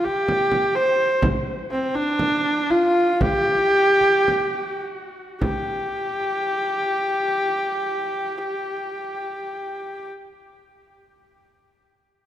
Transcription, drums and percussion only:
0.06 frame drum soft
0.28 frame drum medium
0.52 frame drum medium
1.22 frame drum medium
1.95 frame drum soft
2.19 frame drum medium
2.70 frame drum soft
3.21 frame drum medium
4.01 frame drum soft
4.28 frame drum medium
5.41 frame drum medium

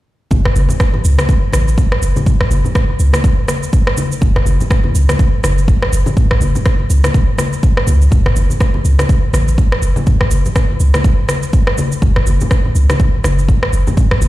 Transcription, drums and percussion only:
0.31 kick loud
0.31 low conga medium
0.31 shaker soft
0.45 kick medium
0.45 cross-stick medium
0.56 high conga medium
0.56 shaker medium
0.69 low conga medium
0.69 shaker medium
0.80 kick loud
0.80 cross-stick medium
0.80 shaker soft
0.94 high conga medium
0.94 low conga medium
1.05 shaker medium
1.18 cross-stick medium
1.18 high conga loud
1.18 shaker soft
1.29 kick loud
1.29 shaker soft
1.53 cross-stick medium
1.53 high conga medium
1.53 shaker medium
1.68 shaker soft
1.78 kick loud
1.78 shaker soft
1.92 cross-stick medium
2.02 shaker medium
2.16 high conga medium
2.16 low conga medium
2.16 shaker soft
2.26 kick loud
2.26 low conga medium
2.26 shaker soft
2.41 kick medium
2.41 cross-stick medium
2.51 high conga medium
2.51 shaker medium
2.64 low conga medium
2.64 shaker medium
2.75 kick loud
2.75 cross-stick medium
2.75 shaker soft
2.89 high conga medium
3.00 shaker medium
3.13 cross-stick medium
3.13 high conga medium
3.13 shaker medium
3.24 kick loud
3.24 shaker soft
3.48 cross-stick medium
3.48 high conga medium
3.48 shaker medium
3.63 shaker soft
3.73 kick loud
3.73 shaker soft
3.87 cross-stick medium
3.97 high conga loud
3.97 shaker medium
4.12 shaker medium
4.21 kick loud
4.21 low conga medium
4.21 shaker soft
4.36 kick medium
4.36 cross-stick medium
4.46 high conga medium
4.46 shaker medium
4.61 low conga medium
4.61 shaker medium
4.71 kick loud
4.71 cross-stick medium
4.71 shaker soft
4.84 high conga medium
4.84 low conga medium
4.95 shaker medium
5.09 cross-stick medium
5.09 high conga loud
5.09 shaker medium
5.19 kick loud
5.19 shaker soft
5.43 cross-stick medium
5.43 high conga medium
5.43 shaker medium
5.58 shaker medium
5.68 kick loud
5.68 shaker soft
5.82 cross-stick medium
5.93 shaker medium
6.06 high conga medium
6.06 low conga loud
6.06 shaker medium
6.17 kick loud
6.17 low conga medium
6.17 shaker soft
6.31 kick medium
6.31 cross-stick medium
6.41 high conga medium
6.41 shaker medium
6.55 low conga medium
6.55 shaker medium
6.66 kick loud
6.66 cross-stick medium
6.66 shaker soft
6.79 high conga medium
6.90 shaker medium
7.04 cross-stick medium
7.04 high conga loud
7.04 shaker medium
7.14 kick loud
7.14 shaker soft
7.38 cross-stick medium
7.38 high conga loud
7.38 shaker medium
7.53 shaker soft
7.63 kick loud
7.63 shaker soft
7.77 cross-stick medium
7.87 high conga loud
7.87 shaker medium
8.02 shaker medium
8.11 kick loud
8.11 low conga medium
8.11 shaker soft
8.26 kick medium
8.26 cross-stick medium
8.36 high conga medium
8.36 shaker medium
8.50 low conga medium
8.50 shaker soft
8.60 kick loud
8.60 cross-stick medium
8.60 shaker soft
8.74 high conga medium
8.74 low conga medium
8.85 shaker medium
8.99 cross-stick medium
8.99 high conga loud
8.99 shaker soft
9.09 kick loud
9.09 shaker soft
9.33 cross-stick medium
9.33 high conga medium
9.33 shaker medium
9.48 shaker soft
9.58 kick loud
9.58 shaker soft
9.72 cross-stick medium
9.82 shaker medium
9.96 high conga medium
9.96 low conga medium
9.96 shaker soft
10.07 kick loud
10.07 low conga medium
10.07 shaker soft
10.21 kick medium
10.21 cross-stick medium
10.31 high conga medium
10.31 shaker medium
10.46 low conga medium
10.46 shaker soft
10.56 kick loud
10.56 cross-stick medium
10.56 shaker soft
10.70 high conga medium
10.80 shaker medium
10.94 cross-stick medium
10.94 high conga loud
10.94 shaker soft
11.04 kick loud
11.04 shaker soft
11.29 cross-stick medium
11.29 high conga medium
11.29 shaker medium
11.43 shaker soft
11.53 kick loud
11.53 shaker soft
11.67 cross-stick medium
11.78 high conga loud
11.78 shaker medium
11.92 shaker soft
12.02 kick loud
12.02 low conga medium
12.02 shaker soft
12.16 kick medium
12.16 cross-stick medium
12.27 high conga medium
12.27 shaker medium
12.41 low conga medium
12.41 shaker soft
12.51 kick loud
12.51 cross-stick medium
12.51 shaker soft
12.65 high conga medium
12.65 low conga medium
12.75 shaker medium
12.90 cross-stick medium
12.90 high conga loud
12.90 shaker soft
13.00 kick loud
13.00 shaker soft
13.24 cross-stick medium
13.24 high conga medium
13.24 shaker medium
13.39 shaker soft
13.48 kick loud
13.48 shaker soft
13.63 cross-stick medium
13.73 shaker medium
13.87 high conga medium
13.87 low conga medium
13.87 shaker soft
13.97 kick loud
13.97 low conga medium
13.97 shaker soft
14.11 kick medium
14.11 cross-stick medium
14.22 high conga medium
14.22 shaker medium

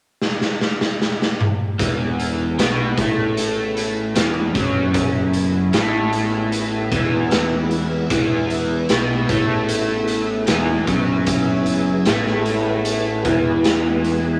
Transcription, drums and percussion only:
0.22 snare medium
0.41 snare medium
0.61 snare medium
0.81 snare medium
1.02 snare medium
1.22 snare medium
1.41 mid tom loud
1.79 kick loud
1.79 closed hi-hat medium
2.19 closed hi-hat medium
2.59 snare loud
2.59 closed hi-hat medium
2.98 kick loud
2.98 closed hi-hat medium
3.37 closed hi-hat medium
3.77 closed hi-hat medium
4.15 snare loud
4.15 closed hi-hat loud
4.55 kick loud
4.55 closed hi-hat medium
4.94 kick loud
4.94 closed hi-hat medium
5.33 closed hi-hat medium
5.73 snare loud
5.73 closed hi-hat medium
6.12 closed hi-hat medium
6.52 closed hi-hat medium
6.92 kick loud
6.92 snare soft
6.92 closed hi-hat medium
7.31 snare loud
7.31 closed hi-hat medium
7.71 closed hi-hat medium
8.10 kick loud
8.10 closed hi-hat medium
8.50 closed hi-hat medium
8.89 snare loud
8.89 closed hi-hat medium
9.29 kick loud
9.29 closed hi-hat medium
9.69 closed hi-hat loud
10.07 closed hi-hat medium
10.47 snare loud
10.47 closed hi-hat loud
10.87 kick loud
10.87 closed hi-hat medium
11.26 kick loud
11.26 closed hi-hat loud
11.66 closed hi-hat medium
12.05 snare loud
12.05 closed hi-hat medium
12.26 snare soft
12.45 closed hi-hat medium
12.85 closed hi-hat medium
13.25 kick loud
13.25 closed hi-hat medium
13.64 snare loud
13.64 closed hi-hat medium
14.04 closed hi-hat medium

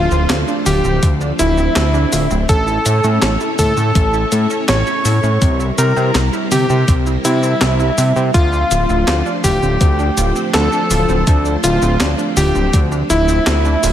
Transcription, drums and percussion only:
0.11 cabasa soft
0.30 snare loud
0.30 clap loud
0.30 closed hi-hat medium
0.30 cabasa soft
0.48 cabasa soft
0.66 open hi-hat medium
0.66 mid tom medium
0.66 cabasa medium
0.84 cabasa soft
1.03 kick loud
1.03 closed hi-hat loud
1.03 cabasa soft
1.21 cabasa soft
1.39 snare soft
1.39 closed hi-hat medium
1.39 cabasa medium
1.58 cabasa soft
1.76 snare loud
1.76 clap loud
1.76 closed hi-hat loud
1.76 cabasa soft
1.94 cabasa soft
2.12 open hi-hat medium
2.12 cabasa medium
2.31 cabasa soft
2.49 kick loud
2.49 closed hi-hat medium
2.49 cabasa soft
2.67 cabasa soft
2.86 closed hi-hat medium
2.86 cabasa medium
3.04 cabasa soft
3.22 snare loud
3.22 clap medium
3.22 closed hi-hat medium
3.22 cabasa soft
3.40 cabasa soft
3.59 kick medium
3.59 open hi-hat medium
3.59 mid tom medium
3.59 cabasa medium
3.77 cabasa soft
3.95 kick loud
3.95 closed hi-hat medium
3.95 cabasa soft
4.14 cabasa soft
4.32 closed hi-hat medium
4.32 cabasa medium
4.50 cabasa soft
4.68 snare loud
4.68 clap medium
4.68 closed hi-hat loud
4.68 cabasa soft
4.87 cabasa soft
5.05 open hi-hat medium
5.05 cabasa medium
5.23 cabasa soft
5.42 kick loud
5.42 closed hi-hat medium
5.42 cabasa soft
5.60 cabasa soft
5.78 closed hi-hat medium
5.78 cabasa medium
5.97 cabasa soft
6.15 snare loud
6.15 clap medium
6.15 closed hi-hat medium
6.15 cabasa soft
6.33 cabasa soft
6.52 open hi-hat medium
6.52 mid tom medium
6.52 cabasa medium
6.70 cabasa soft
6.88 kick loud
6.88 closed hi-hat medium
6.88 cabasa soft
7.06 cabasa soft
7.25 snare soft
7.25 closed hi-hat medium
7.25 cabasa medium
7.43 cabasa soft
7.61 snare loud
7.61 clap medium
7.61 closed hi-hat medium
7.61 cabasa soft
7.80 cabasa soft
7.98 open hi-hat medium
7.98 cabasa medium
8.16 cabasa soft
8.34 kick loud
8.34 closed hi-hat medium
8.34 cabasa soft
8.53 cabasa soft
8.71 closed hi-hat medium
8.71 cabasa medium
8.89 cabasa soft
9.08 snare loud
9.08 clap medium
9.08 closed hi-hat medium
9.08 cabasa soft
9.26 cabasa soft
9.44 kick medium
9.44 open hi-hat medium
9.44 mid tom medium
9.44 cabasa medium
9.62 cabasa soft
9.81 kick loud
9.81 closed hi-hat medium
9.81 cabasa soft
9.99 cabasa soft
10.17 closed hi-hat medium
10.17 cabasa medium
10.36 cabasa soft
10.54 snare loud
10.54 clap medium
10.54 closed hi-hat medium
10.54 cabasa soft
10.72 cabasa soft
10.91 open hi-hat medium
10.91 cabasa medium
11.09 cabasa soft
11.27 kick loud
11.27 closed hi-hat medium
11.27 cabasa soft
11.45 cabasa soft
11.64 closed hi-hat medium
11.64 cabasa medium
11.82 cabasa soft
12.00 snare loud
12.00 clap medium
12.00 closed hi-hat medium
12.00 cabasa soft
12.19 cabasa soft
12.37 open hi-hat medium
12.37 mid tom medium
12.37 cabasa medium
12.55 cabasa soft
12.73 kick loud
12.73 closed hi-hat medium
12.73 cabasa soft
12.92 cabasa soft
13.10 snare soft
13.10 closed hi-hat medium
13.10 cabasa medium
13.28 cabasa soft
13.47 snare loud
13.47 clap loud
13.47 closed hi-hat medium
13.47 cabasa soft
13.65 cabasa soft
13.83 open hi-hat medium
13.83 cabasa medium

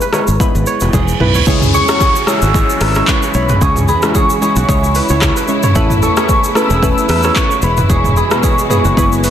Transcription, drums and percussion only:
0.01 shaker medium
0.13 cross-stick loud
0.13 low bongo medium
0.13 shaker medium
0.27 shaker medium
0.40 kick loud
0.40 low conga medium
0.40 shaker medium
0.55 shaker medium
0.66 shaker soft
0.80 low bongo medium
0.80 shaker soft
0.93 kick medium
0.93 high tom medium
0.93 high bongo medium
0.93 low conga medium
0.93 shaker medium
1.08 shaker medium
1.20 mid tom medium
1.35 floor tom medium
1.35 shaker medium
1.47 kick loud
1.47 shaker medium
1.62 mid tom loud
1.62 shaker medium
1.74 shaker medium
1.88 cross-stick loud
1.88 shaker medium
2.01 kick medium
2.01 shaker medium
2.16 shaker medium
2.27 cross-stick loud
2.27 shaker medium
2.42 shaker medium
2.54 kick loud
2.54 shaker medium
2.70 shaker medium
2.81 cross-stick loud
2.81 open hi-hat medium
2.81 shaker medium
2.95 cross-stick loud
2.95 shaker medium
3.08 kick loud
3.08 clap medium
3.08 shaker medium
3.23 shaker medium
3.34 shaker medium
3.49 mid tom loud
3.49 shaker medium
3.61 kick loud
3.61 shaker medium
3.76 mid tom loud
3.76 shaker medium
3.88 shaker medium
4.02 cross-stick loud
4.02 shaker medium
4.15 kick medium
4.15 shaker medium
4.30 shaker medium
4.42 shaker medium
4.56 shaker medium
4.69 kick loud
4.69 shaker medium
4.84 shaker medium
4.95 open hi-hat medium
4.95 shaker medium
5.09 shaker soft
5.22 kick medium
5.22 cross-stick medium
5.22 clap medium
5.22 shaker medium
5.36 shaker medium
5.48 shaker medium
5.63 mid tom loud
5.63 shaker medium
5.75 kick loud
5.75 shaker medium
5.90 mid tom loud
5.90 shaker medium
6.02 shaker medium
6.17 cross-stick loud
6.17 shaker medium
6.29 kick medium
6.29 shaker medium
6.44 shaker medium
6.55 cross-stick loud
6.55 shaker medium
6.70 shaker medium
6.83 kick loud
6.83 shaker medium
6.98 shaker medium
7.09 cross-stick loud
7.09 open hi-hat medium
7.09 shaker medium
7.23 cross-stick loud
7.23 shaker medium
7.36 kick loud
7.36 clap medium
7.36 shaker medium
7.51 shaker medium
7.62 shaker medium
7.77 mid tom loud
7.77 shaker medium
7.90 kick loud
7.90 shaker medium
8.04 mid tom loud
8.04 shaker medium
8.17 shaker medium
8.31 cross-stick loud
8.31 shaker medium
8.43 kick medium
8.43 shaker medium
8.59 shaker medium
8.70 mid tom medium
8.70 shaker medium
8.85 shaker medium
8.97 kick loud
8.97 shaker medium
9.12 shaker medium
9.24 open hi-hat medium
9.24 shaker medium

